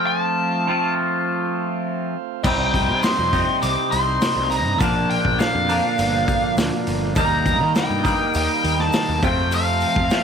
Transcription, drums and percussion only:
2.44 kick loud
2.44 crash loud
2.44 shaker loud
2.74 kick medium
2.74 open hi-hat medium
2.74 shaker medium
3.03 snare loud
3.03 open hi-hat medium
3.03 shaker loud
3.33 kick medium
3.33 open hi-hat medium
3.33 shaker medium
3.62 open hi-hat medium
3.62 shaker loud
3.92 open hi-hat medium
3.92 shaker medium
4.21 snare loud
4.21 open hi-hat loud
4.21 shaker loud
4.51 open hi-hat medium
4.51 shaker medium
4.80 kick loud
4.80 open hi-hat medium
4.80 shaker loud
5.10 open hi-hat medium
5.25 kick medium
5.39 snare loud
5.39 open hi-hat medium
5.39 shaker loud
5.69 open hi-hat medium
5.69 shaker medium
5.98 open hi-hat medium
5.98 shaker loud
6.28 kick medium
6.28 open hi-hat medium
6.28 shaker medium
6.58 snare loud
6.58 open hi-hat medium
6.58 shaker loud
6.87 open hi-hat medium
6.87 shaker medium
7.15 kick loud
7.15 open hi-hat medium
7.15 shaker loud
7.46 kick medium
7.46 open hi-hat medium
7.46 shaker medium
7.75 snare loud
7.75 open hi-hat loud
7.75 shaker loud
8.04 kick medium
8.04 open hi-hat medium
8.04 shaker medium
8.34 open hi-hat loud
8.34 shaker loud
8.64 open hi-hat medium
8.80 snare soft
8.93 snare loud
8.93 open hi-hat loud
8.93 shaker loud
9.22 kick loud
9.22 open hi-hat medium
9.22 shaker medium
9.51 open hi-hat loud
9.51 shaker loud
9.81 open hi-hat medium
9.81 shaker medium
9.96 kick medium
10.10 snare loud
10.10 open hi-hat medium
10.10 shaker loud

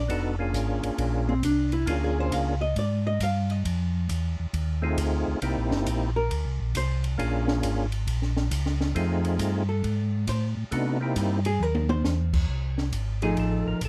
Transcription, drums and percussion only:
0.09 kick soft
0.09 ride medium
0.54 kick soft
0.54 hi-hat pedal medium
0.54 ride medium
0.83 ride medium
0.98 kick soft
0.98 ride medium
1.43 kick soft
1.43 hi-hat pedal medium
1.43 ride medium
1.72 ride soft
1.87 kick soft
1.87 ride medium
2.32 kick soft
2.32 hi-hat pedal soft
2.32 ride medium
2.76 kick soft
2.76 ride medium
3.20 kick soft
3.20 hi-hat pedal medium
3.20 ride medium
3.50 ride soft
3.65 kick soft
3.65 ride medium
4.09 kick soft
4.09 hi-hat pedal medium
4.09 ride medium
4.54 kick soft
4.54 ride medium
4.98 kick soft
4.98 hi-hat pedal medium
4.98 ride medium
5.42 kick soft
5.42 ride medium
5.71 snare medium
5.86 kick soft
5.86 hi-hat pedal medium
5.86 ride medium
6.30 kick soft
6.30 ride medium
6.75 kick soft
6.75 hi-hat pedal medium
6.75 ride medium
7.04 ride medium
7.19 kick soft
7.19 ride medium
7.48 snare medium
7.63 kick soft
7.63 hi-hat pedal medium
7.63 ride medium
7.92 ride soft
8.07 kick soft
8.07 ride medium
8.22 snare soft
8.37 snare soft
8.51 kick soft
8.51 hi-hat pedal medium
8.51 ride medium
8.66 snare soft
8.81 snare soft
8.95 kick soft
8.95 ride medium
9.25 ride medium
9.39 kick soft
9.39 hi-hat pedal medium
9.39 ride medium
9.83 kick soft
9.83 ride medium
10.27 kick soft
10.27 hi-hat pedal medium
10.27 ride medium
10.72 kick soft
10.72 ride medium
11.16 kick soft
11.16 hi-hat pedal medium
11.16 ride medium
11.45 ride medium
11.60 mid tom soft
11.75 high tom medium
11.89 high tom medium
12.04 snare medium
12.04 hi-hat pedal medium
12.33 kick medium
12.33 crash medium
12.49 kick soft
12.78 snare soft
12.93 kick soft
12.93 hi-hat pedal medium
12.93 ride medium
13.22 ride soft
13.37 kick soft
13.37 ride medium
13.81 kick soft
13.81 hi-hat pedal medium
13.81 ride medium

